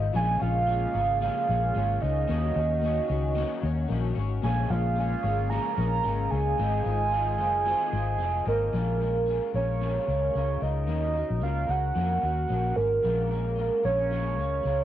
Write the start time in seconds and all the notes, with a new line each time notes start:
Already playing: D#3 G#3 F4 C5 D#5
0.13 A#1 A#2 C#3 F3 G#3 A#3 C#4 F4 G#4 C#5 G#5
0.40 A#1 C#4 F4 C#5 F5
0.44 G#3
0.67 G#3 C#4 F4 C#5
0.94 G#1 G#3 C#4 F4 C#5
1.21 A#2 F3 G#3 C#4 F4 C#5 F5
1.48 A#1 G#3 C#4 F4 C#5
1.74 G#1 G#3 C#4 F4 C#5
2.00 C#2 C#4 F4 C#5 D#5
2.04 G#3
2.27 D#2 D#3 A#3 C#4 F#4 C#5
2.54 D#2 F#4 C#5
2.58 C#4
2.81 A#3 C#4 F#4
2.85 C#5
3.08 C#2 C#4 F#4 C#5
3.35 D#3 A#3 C#4 F#4 C#5
3.61 D#2 C#4 F#4 C#5
3.88 A#1 A#3 C#4 F#4
3.92 C#5
4.15 G#1 F#4 C#5
4.19 C#4
4.42 A#1 A#2 C#3 F3 G#3 A#3 C#4 F4 G#4 C#5 G#5
4.69 A#1 C#4 F4 C#5 F5
4.73 G#3
4.96 G#3 C#4 F4
5.00 C#5
5.23 G#1 C#4 F4 C#5
5.27 G#3
5.50 A#2 F3 G#3 C#4 F4 C#5 A#5
5.77 A#1 C#4 F4 C#5
5.81 G#3
6.04 G#1 G#3 C#4 F4 C#5
6.30 C#2 G#3 C#4 F4 C#5 G#5
6.58 G#1 D#3 G#3 C4 F4 C5 D#5
6.84 G#1 C5 D#5
6.88 F4
7.11 C4 F4 C5
7.16 D#5
7.38 F#1 C5 D#5
7.42 F4
7.65 G#3 C4 F4 C5 D#5
7.92 G#1 F4 C5 D#5
8.19 F1 C4 F4 C5 D#5
8.45 G#1 F4 A#4 C5 D#5
8.72 A#1 A#2 F3 G#3 C#4 F4 A#4
8.99 G#3 C#4 F4 A#4
9.26 G#3 C#4 F4
9.30 A#4
9.53 A#1 G#3 C#4 F4 A#4 C#5
9.80 A#2 F3 G#3 C#4 F4 A#4
10.07 C#2 G#3 C#4 F4 A#4
10.34 C#2 G#3 C#4 F4
10.38 A#4
10.60 C#2 C#4 F4 A#4 D#5
10.64 G#3
10.87 D#2 D#3 A#3 C#4 F#4 A#4
11.13 F#4 A#4
11.18 C#4
11.30 A#1
11.40 C#2 A#3 C#4 F#4 A#4 F5
11.67 C#2 C#4 F#4 A#4 F#5
11.95 F2 D#3 A#3 C#4 F#4 A#4
12.21 D#2 C#4 F#4 A#4
12.48 A#1 A#3 C#4 F#4
12.53 A#4
12.75 G#1 C#4 F#4 A#4
13.03 A#1 A#2 F3 G#3 C#4 F4 A#4
13.29 C#4 F4 A#4
13.33 G#3
13.56 G#3 C#4 F4 A#4
13.83 A#1 G#3 C#4 F4 A#4 C#5
14.10 A#2 F3 G#3 C#4 F4 A#4
14.37 C#2 C#4 F4 A#4
14.41 G#3
14.63 C#2 G#3 C#4 F4
14.67 A#4